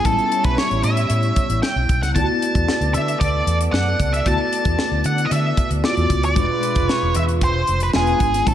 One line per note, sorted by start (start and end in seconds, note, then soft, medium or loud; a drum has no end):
0.03 0.15 A1 medium
0.03 2.10 G3 medium
0.03 1.86 G3 medium
0.03 2.11 B3 soft
0.03 2.11 C#4 soft
0.03 2.12 E4 medium
0.03 1.86 E4 medium
0.03 0.45 A4 medium
0.03 1.86 C#5 medium
0.03 kick medium
0.03 closed hi-hat medium
0.19 closed hi-hat soft
0.32 closed hi-hat medium
0.44 0.55 B1 medium
0.44 0.57 B4 medium
0.44 kick medium
0.44 closed hi-hat soft
0.58 0.84 C#5 medium
0.58 snare medium
0.71 0.81 A1 medium
0.71 closed hi-hat soft
0.83 1.04 A2 medium
0.83 1.59 E5 medium
0.83 closed hi-hat medium
0.97 closed hi-hat soft
1.10 1.30 A2 medium
1.10 closed hi-hat medium
1.23 closed hi-hat soft
1.36 kick medium
1.36 closed hi-hat medium
1.49 1.60 A1 medium
1.49 closed hi-hat medium
1.63 2.02 G5 medium
1.63 snare medium
1.76 1.86 B1 medium
1.89 1.99 B1 medium
1.89 kick medium
1.89 closed hi-hat medium
2.02 2.12 C#2 medium
2.02 2.08 F#5 medium
2.02 snare soft
2.02 closed hi-hat soft
2.14 2.26 D2 medium
2.14 4.21 A3 medium
2.14 4.22 B3 soft
2.14 6.06 B3 medium
2.14 4.22 E4 soft
2.14 2.22 F4 soft
2.14 6.06 A4 medium
2.14 6.06 D5 medium
2.14 2.97 A5 medium
2.14 kick medium
2.14 closed hi-hat medium
2.23 4.25 F#4 medium
2.42 closed hi-hat medium
2.55 2.65 E2 medium
2.55 kick medium
2.55 closed hi-hat soft
2.68 snare medium
2.80 2.95 D2 medium
2.80 closed hi-hat soft
2.94 3.14 D3 medium
2.94 3.20 E5 medium
2.94 closed hi-hat medium
3.08 closed hi-hat soft
3.20 3.41 D2 medium
3.20 3.57 D5 medium
3.20 kick medium
3.20 closed hi-hat medium
3.46 3.67 E2 medium
3.46 closed hi-hat medium
3.61 closed hi-hat medium
3.72 3.93 F#2 medium
3.72 4.14 F#5 medium
3.72 snare medium
3.99 4.20 C#2 medium
3.99 kick medium
3.99 closed hi-hat medium
4.13 4.27 E5 medium
4.13 closed hi-hat soft
4.24 4.36 D2 medium
4.24 5.80 A3 medium
4.24 5.80 B3 soft
4.24 5.80 E4 soft
4.24 5.81 F#4 medium
4.24 5.05 A5 medium
4.24 kick medium
4.24 closed hi-hat medium
4.53 closed hi-hat medium
4.65 4.75 E2 medium
4.65 kick medium
4.65 closed hi-hat soft
4.79 snare medium
4.91 5.01 D2 medium
5.04 5.25 D3 medium
5.04 5.25 F#5 medium
5.04 closed hi-hat medium
5.18 closed hi-hat soft
5.25 5.32 D#5 medium
5.31 5.51 D3 medium
5.31 5.69 E5 medium
5.31 closed hi-hat medium
5.57 kick medium
5.57 closed hi-hat medium
5.70 5.81 D2 medium
5.70 closed hi-hat soft
5.83 6.36 A3 soft
5.83 6.36 B3 soft
5.83 6.36 E4 soft
5.83 5.90 F4 soft
5.83 6.21 D5 medium
5.83 snare medium
5.90 6.40 F#4 soft
5.97 6.07 E2 medium
5.97 closed hi-hat soft
6.10 6.23 C#2 medium
6.10 kick medium
6.10 closed hi-hat medium
6.23 6.33 D2 medium
6.23 6.88 D5 medium
6.23 closed hi-hat soft
6.35 6.46 E1 medium
6.35 7.91 B2 medium
6.35 7.90 G#3 soft
6.35 7.65 G#3 medium
6.35 7.91 D4 soft
6.35 7.65 F4 medium
6.35 7.91 F4 medium
6.35 7.65 B4 medium
6.35 kick medium
6.35 closed hi-hat medium
6.63 closed hi-hat medium
6.75 6.86 F1 medium
6.75 kick medium
6.75 closed hi-hat soft
6.88 7.16 C#5 medium
6.88 snare medium
7.02 7.12 E1 medium
7.15 7.43 E2 medium
7.15 7.23 E5 medium
7.15 closed hi-hat medium
7.29 closed hi-hat soft
7.41 7.61 E1 medium
7.41 7.79 C5 medium
7.41 kick medium
7.41 closed hi-hat medium
7.67 7.88 F1 medium
7.67 closed hi-hat medium
7.80 7.88 B4 medium
7.80 closed hi-hat medium
7.93 8.14 E1 medium
7.93 8.46 G#3 medium
7.93 8.20 G#3 medium
7.93 8.45 B3 soft
7.93 8.46 D4 medium
7.93 8.20 F4 medium
7.93 8.47 F4 medium
7.93 8.48 G#4 medium
7.93 8.20 B4 medium
7.93 snare loud
8.07 closed hi-hat soft
8.20 8.40 G#1 medium
8.20 kick medium
8.20 closed hi-hat medium
8.34 snare soft
8.34 closed hi-hat medium
8.45 8.54 A1 medium
8.45 8.54 G3 medium
8.45 8.54 B3 medium
8.45 8.54 C#4 medium
8.45 8.54 E4 medium
8.45 8.54 A4 medium
8.45 8.54 C#5 medium
8.45 kick medium
8.45 closed hi-hat medium